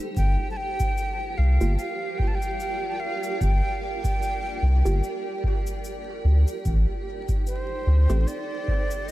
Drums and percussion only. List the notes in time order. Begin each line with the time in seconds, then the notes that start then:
0.17 kick, cabasa
0.80 kick, cabasa
0.98 cabasa
1.61 cabasa
1.79 cabasa
2.19 kick
2.42 cabasa
2.60 cabasa
3.23 cabasa
3.41 kick, cabasa
4.04 kick, cabasa
4.22 cabasa
4.86 cabasa
5.04 cabasa
5.44 kick
5.67 cabasa
5.84 cabasa
6.48 cabasa
6.65 kick, cabasa
7.29 kick, cabasa
7.47 cabasa
8.10 cabasa
8.28 cabasa
8.68 kick
8.91 cabasa